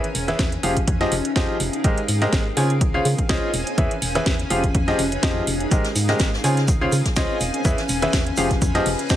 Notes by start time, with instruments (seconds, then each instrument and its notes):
Already playing: ambient pad C#4 G#5
0.04 closed hi-hat
0.15 fm bass E1, open hi-hat
0.28 grand piano E3 E4 G#4 B4 C#5 E5, snare, closed hi-hat
0.39 fm bass E2, kick, snare, closed hi-hat
0.52 closed hi-hat
0.63 fm bass F1, grand piano F3 F4 G4 G#4 C5 F5, ambient pad D#4, open hi-hat
0.77 ambient pad G#4, kick, closed hi-hat
0.87 fm bass F2, kick, closed hi-hat
0.94 ambient pad F5
1.01 grand piano F3 F4 G4 G#4 C5 D#5, snare, closed hi-hat
1.12 fm bass F1, open hi-hat
1.25 closed hi-hat
1.36 fm bass F2, grand piano F3 F4 G4 G#4 C5 D#5, kick, snare, closed hi-hat
1.60 fm bass F1, open hi-hat
1.73 closed hi-hat
1.84 fm bass G#1, grand piano G#3 G4 G#4 A#4 C5 D#5, kick, closed hi-hat
1.98 closed hi-hat
2.08 fm bass G#2, open hi-hat
2.18 grand piano G#3 G4 G#4 A#4 C5 D#5, ambient pad G#5, snare, closed hi-hat
2.33 fm bass G#1, kick, snare, closed hi-hat
2.57 fm bass C#3, grand piano C#3 F4 G#4 C5 C#5 G#5, ambient pad C#4, open hi-hat
2.70 closed hi-hat
2.81 fm bass C#2, kick, closed hi-hat
2.94 grand piano C#3 F4 G#4 C5 C#5 F5
3.05 fm bass C#3, open hi-hat
3.18 kick, closed hi-hat
3.29 fm bass C#2, grand piano F4 G#4 C5 C#5 D#5, kick, snare, closed hi-hat
3.54 fm bass E1, open hi-hat
3.67 closed hi-hat
3.78 fm bass E2, grand piano E3 E4 G#4 B4 C#5 E5, kick, closed hi-hat
3.91 closed hi-hat
4.02 fm bass E1, open hi-hat
4.15 grand piano E3 E4 G#4 B4 C#5 E5, snare, closed hi-hat
4.26 fm bass E2, kick, snare, closed hi-hat
4.39 closed hi-hat
4.50 fm bass F1, grand piano F3 F4 G4 G#4 C5 F5, ambient pad D#4, open hi-hat
4.55 ambient pad G#4
4.64 kick, closed hi-hat
4.75 fm bass F2, kick, closed hi-hat
4.88 grand piano F3 F4 G4 G#4 C5 D#5, snare, closed hi-hat
4.99 fm bass F1, open hi-hat
5.12 closed hi-hat
5.23 fm bass F2, grand piano F3 F4 G4 G#4 C5 D#5, kick, snare, closed hi-hat
5.47 fm bass F1, open hi-hat
5.60 closed hi-hat
5.71 fm bass G#1, grand piano G#3 G4 G#4 A#4 C5 D#5, kick, closed hi-hat, shaker
5.84 snare, closed hi-hat
5.96 fm bass G#2, open hi-hat, shaker
6.05 grand piano G#3 G4 G#4 A#4 C5 D#5, ambient pad G#5, snare, closed hi-hat
6.19 fm bass G#1, kick, snare, closed hi-hat, shaker
6.33 snare
6.44 fm bass C#3, grand piano C#3 F4 G#4 C5 C#5 G#5, ambient pad C#4, open hi-hat, shaker
6.57 snare, closed hi-hat
6.68 fm bass C#2, kick, closed hi-hat, shaker
6.81 grand piano C#3 F4 G#4 C5 C#5 F5
6.92 fm bass C#3, open hi-hat, shaker
7.05 kick, snare, closed hi-hat
7.16 fm bass C#2, grand piano F4 G#4 C5 C#5 D#5, kick, snare, closed hi-hat, shaker
7.29 closed hi-hat
7.41 fm bass E1, open hi-hat, shaker
7.54 closed hi-hat
7.65 fm bass E2, grand piano E3 E4 G#4 B4 C#5 E5, kick, closed hi-hat, shaker
7.78 snare, closed hi-hat
7.89 fm bass E1, open hi-hat, shaker
8.02 grand piano E3 E4 G#4 B4 C#5 E5, snare, closed hi-hat
8.13 fm bass E2, kick, snare, closed hi-hat, shaker
8.27 closed hi-hat
8.37 fm bass F1, grand piano F3 F4 G4 G#4 C5 F5, ambient pad D#4, snare, open hi-hat, shaker
8.44 ambient pad G#4
8.51 kick, snare, closed hi-hat
8.60 fm bass F2, ambient pad F5, kick, closed hi-hat, shaker
8.75 grand piano F3 F4 G4 G#4 C5 D#5, snare, closed hi-hat
8.86 fm bass F1, open hi-hat
8.99 closed hi-hat
9.10 fm bass F2, grand piano F3 F4 G4 G#4 C5 D#5, kick, snare, closed hi-hat, shaker